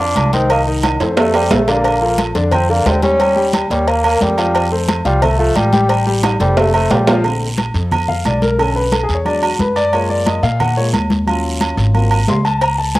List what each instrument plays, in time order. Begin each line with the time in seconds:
Already playing: upright bass F2, bassoon D4
0.00 grand piano F3 F4 F5
0.16 upright bass C2, cowbell, high conga, low agogo, short guiro
0.33 grand piano D#3 D#4 D#5, bassoon C4, cowbell, high conga, short guiro
0.50 grand piano D#3 D#4 D#5, bassoon A#3, cowbell, high conga, low agogo, long guiro
0.67 grand piano D#3 D#4 D#5, high conga
0.83 cowbell, high conga, high timbale, low agogo, short guiro
1.00 upright bass F2, grand piano A3 A4 C5, cowbell, high conga, high timbale, short guiro
1.17 bassoon A3, cowbell, high conga, low timbale, low agogo, long guiro
1.34 bassoon G3, grand piano A3 A4 C5, high conga, low timbale, low agogo
1.51 upright bass A#1, bassoon A3, cowbell, high conga, low timbale, short guiro
1.68 grand piano D3 D4 D5, bassoon A#3, cowbell, low timbale, low agogo, short guiro
1.84 cowbell, high conga, low agogo, long guiro
2.01 grand piano F3 F4 A4, high conga
2.18 cowbell, high conga, low agogo, short guiro
2.35 upright bass F2, grand piano D3 D4 D5, cowbell, high conga, short guiro
2.52 grand piano F3 F4 A4, bassoon C4, cowbell, high conga, low conga, low agogo, long guiro
2.69 grand piano D3 D4 D5, bassoon A#3, high conga
2.86 upright bass D#2, bassoon C4, cowbell, high conga, low timbale, low agogo, short guiro
3.02 grand piano G3 G4 G5, bassoon C#4, cowbell, high conga, short guiro
3.19 grand piano G3 G4 G5, cowbell, low agogo, long guiro
3.36 grand piano G3 G4 G5, high conga
3.53 cowbell, high conga, low agogo, short guiro
3.70 upright bass D#2, bassoon G3, grand piano A#3 A#4 C#5, cowbell, high conga, short guiro
3.87 bassoon A#3, cowbell, high conga, low agogo, long guiro
4.04 grand piano A#3 A#4 C#5, bassoon A#3, high conga, low agogo
4.21 upright bass F2, bassoon G3, cowbell, high conga, short guiro
4.38 grand piano F3 F4 F5, cowbell, low agogo, short guiro
4.55 cowbell, high conga, low agogo, long guiro
4.72 grand piano A3 A4 C5, high conga
4.88 cowbell, high conga, low agogo, short guiro
5.05 upright bass C2, grand piano F3 F4 F5, bassoon G3, cowbell, high conga, short guiro
5.22 grand piano A3 A4 C5, bassoon A3, cowbell, high conga, low conga, low agogo, long guiro
5.39 grand piano F3 F4 F5, bassoon A3, high conga
5.56 upright bass A1, bassoon G3, cowbell, high conga, low agogo, short guiro
5.73 grand piano G3 G4 G5, cowbell, high conga, short guiro
5.89 grand piano G3 G4 G5, cowbell, high conga, low agogo, long guiro
6.07 grand piano G3 G4 G5, high conga
6.23 cowbell, high conga, high timbale, low agogo, short guiro
6.40 upright bass F1, bassoon G3, grand piano A3 A4 C5, cowbell, high conga, short guiro
6.57 bassoon A3, cowbell, high conga, low timbale, low agogo, long guiro
6.74 grand piano A3 A4 C5, bassoon A3, high conga, low agogo
6.90 upright bass A#1, bassoon G3, cowbell, high conga, low timbale, short guiro
7.07 grand piano F3 F4 F5, cowbell, high conga, low timbale, low agogo, short guiro
7.24 grand piano D3 A3 C4, high conga, low agogo, long guiro
7.41 high conga
7.57 high conga, low agogo, short guiro
7.74 upright bass F2, high conga, short guiro
7.91 high conga, low conga, low agogo, long guiro
8.08 grand piano F5, high conga, low conga
8.25 upright bass B1, grand piano D5, high conga, low agogo, short guiro
8.42 grand piano A#4, high conga, short guiro
8.58 grand piano D3 A3 C#4 A4, high conga, low agogo, long guiro
8.76 grand piano B4, high conga
8.92 grand piano A4, high conga, low agogo, short guiro
9.03 grand piano G#4
9.09 upright bass E2, high conga, short guiro
9.15 grand piano C#5
9.25 grand piano F#3 G#3 D4 D5, high conga, low agogo, long guiro
9.42 grand piano F#4, high conga, low agogo
9.59 upright bass F#2, grand piano B4, high conga, short guiro
9.76 grand piano D5, low agogo, short guiro
9.93 grand piano G#3 A#3 F4 C#5, high conga, low agogo, long guiro
10.10 grand piano D5, high conga
10.26 grand piano D#5, high conga, low agogo, short guiro
10.43 upright bass A#2, grand piano F5, high conga, short guiro
10.60 grand piano F#5, high conga, low conga, low agogo, long guiro
10.77 grand piano G#3 A#3 F4 C#5, high conga
10.93 upright bass D#2, high conga, low agogo, short guiro
11.10 high conga, short guiro
11.27 grand piano F#3 C#4 F4, high conga, low agogo, long guiro
11.44 high conga
11.61 high conga, low agogo, short guiro
11.77 upright bass G#1, high conga, short guiro
11.94 grand piano F#3 A#3 C4 F4, high conga, low agogo, long guiro
12.11 high conga, low agogo
12.28 upright bass C#2, grand piano C6, high conga, low timbale, short guiro
12.45 grand piano A5, low agogo, short guiro
12.61 grand piano A#5, cowbell, high conga, low agogo, long guiro
12.78 grand piano A5, high conga
12.95 grand piano G#5, cowbell, high conga, low agogo, short guiro